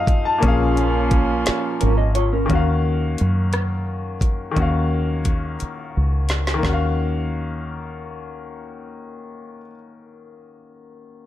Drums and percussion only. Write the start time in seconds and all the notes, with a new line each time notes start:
0.07 kick, closed hi-hat
0.43 kick, closed hi-hat
0.77 closed hi-hat
1.11 kick, closed hi-hat
1.46 snare, closed hi-hat
1.81 closed hi-hat
2.15 closed hi-hat
2.50 kick, closed hi-hat
3.18 closed hi-hat
3.53 cross-stick, closed hi-hat
4.21 kick, closed hi-hat
4.57 kick, closed hi-hat
5.25 kick, closed hi-hat
5.60 closed hi-hat
6.29 snare, closed hi-hat
6.47 snare
6.63 kick, snare